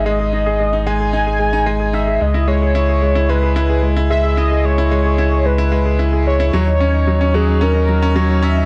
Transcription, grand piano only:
X:1
M:4/4
L:1/16
Q:1/4=111
K:C#dor
V:1 name="Grand piano"
G, G D G G, D G, G D G G, D G, G D G | G, E G, G E G G, E G, G E G G, E G, G | E G G, E G, G E G G, E G, G E G G, E | F, D C D F, C F, D C D F, C F, D C D |]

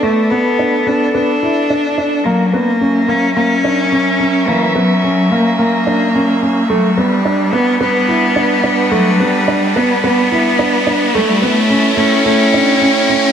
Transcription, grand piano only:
X:1
M:4/4
L:1/8
Q:1/4=108
K:F#phr
V:1 name="Grand piano"
A, B, D B, B, E D D | ^A, B, C A, A, D C C | ^A, B, C A, A, D C C | A, B, D B, B, E D D |
A, B, D B, B, E D D | A, B, C A, A, D C C |]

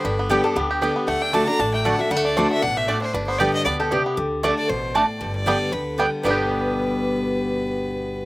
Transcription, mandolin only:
X:1
M:4/4
L:1/8
Q:"Swing" 1/4=232
K:G
V:1 name="Mandolin"
z2 [B,Gdg] z3 [B,Gdg] z | z2 [A,Fda] z3 [A,Fda] z | z2 [A,Fda] z3 [A,Fda] z | z2 [B,Gdg] z3 [B,Gdg] z |
z2 [A,Fda] z3 [A,Fda] z | z2 [B,Gdg] z3 [B,Gdg] z | [B,Gdg]8- | [B,Gdg]8 |]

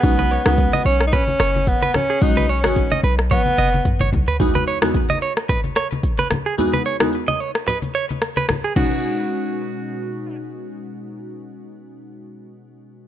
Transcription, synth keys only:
X:1
M:4/4
L:1/16
Q:"Swing 16ths" 1/4=110
K:B
V:1 name="Synth keys"
[G,CDF] z2 [G,CDF] z12 | [G,CDF] z2 [G,CDF] z12 | [E,,G,B,DF] z2 [E,,G,B,DF] z12 | [E,,G,B,DF] z2 [E,,G,B,DF] z12 |
[B,,G,CDF]16- | [B,,G,CDF]16 |]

